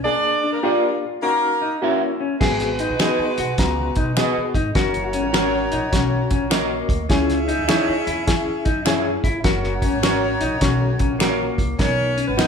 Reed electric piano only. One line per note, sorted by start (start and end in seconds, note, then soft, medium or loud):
0.05 0.45 A#3 medium
0.05 0.45 D4 medium
0.05 0.45 G#4 medium
0.63 1.03 A#3 medium
0.63 1.03 D4 medium
0.63 1.03 G4 medium
1.23 1.62 C#4 medium
1.23 1.63 D#4 medium
1.23 1.63 F#4 medium
1.82 2.22 A#3 medium
1.82 2.22 E4 medium
1.82 2.22 F#4 medium
2.41 2.81 B3 medium
2.41 2.81 F#4 medium
2.41 2.81 G#4 medium
3.00 3.40 B3 medium
3.00 3.40 F#4 medium
3.00 3.40 G#4 medium
3.59 3.98 B3 medium
3.59 3.98 F#4 medium
3.59 3.98 A#5 loud
4.17 4.56 B3 medium
4.17 4.57 F#4 medium
4.17 4.57 G#4 medium
4.75 5.15 C#4 medium
4.75 5.15 F#4 medium
4.75 5.15 A#4 loud
5.34 5.74 C#4 medium
5.34 5.74 F#4 medium
5.34 5.74 A#4 loud
5.93 6.32 C#4 medium
5.93 6.32 F#4 medium
5.93 6.33 C#5 medium
6.51 6.91 C#4 medium
6.51 6.91 F#4 medium
6.51 6.91 A#4 medium
6.51 7.06 D#5 medium
7.10 7.50 C#4 medium
7.10 7.50 E4 medium
7.10 7.50 G#4 medium
7.69 8.08 C#4 medium
7.69 8.08 E4 medium
7.69 8.08 G#4 medium
8.27 8.67 C#4 medium
8.27 8.67 E4 medium
8.27 8.67 G#4 medium
8.87 9.26 C#4 medium
8.87 9.26 E4 medium
8.87 9.26 G#4 medium
9.44 9.84 C#4 medium
9.44 9.84 F#4 medium
9.44 9.84 A#4 loud
10.03 10.43 C#4 medium
10.03 10.43 F#4 medium
10.03 10.43 C#5 loud
10.62 11.02 C#4 medium
10.62 11.02 F#4 medium
10.62 11.02 C#5 loud
11.21 11.60 C#4 medium
11.21 11.61 F#4 medium
11.21 11.61 A#4 medium
11.79 12.19 B3 medium
11.79 12.19 D#4 medium
11.79 12.19 A#4 medium
12.38 12.47 B3 medium
12.38 12.47 D#4 medium
12.38 12.47 A#4 medium